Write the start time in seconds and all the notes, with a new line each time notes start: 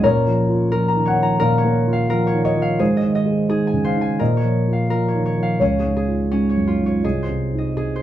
Already playing: C#4 C#5
0.03 A#2 A#4 C#5
0.27 F3
0.49 F4
0.72 F3 A#4
0.88 A#5
0.95 D#3
1.06 C#5 F#5
1.18 F3
1.23 A#5
1.40 A#2 A#4 F5
1.58 C#5
1.64 A#3
1.87 F4
1.93 F5
2.10 F3 A#4
2.27 C#5
2.33 D#3
2.45 C#5 D#5
2.57 F3
2.62 F5
2.79 G#2 G#4 C5
2.97 D#5
3.03 D#3
3.15 D#5
3.26 G#4
3.49 D#3 G#4
3.67 G#5
3.73 C#3
3.84 C5 F5
3.96 D#3
4.01 G#5
4.19 A#2 A#4 D#5
4.37 C#5
4.42 F3
4.67 F4
4.73 F5
4.90 F3 A#4
5.08 C#5
5.14 D#3
5.26 C#5
5.37 F3
5.43 F5
5.60 C#2 C#4 C#5
5.79 G#4
5.84 G#2
5.97 G#4
6.08 F4
6.31 G#2 C#4
6.50 C#5
6.56 F#2
6.67 F4
6.80 G#2
6.86 C#5
7.04 C2 G#4 D#5
7.23 C5
7.29 C3
7.53 D#4
7.58 D#5
7.77 C3 G#4
7.96 C5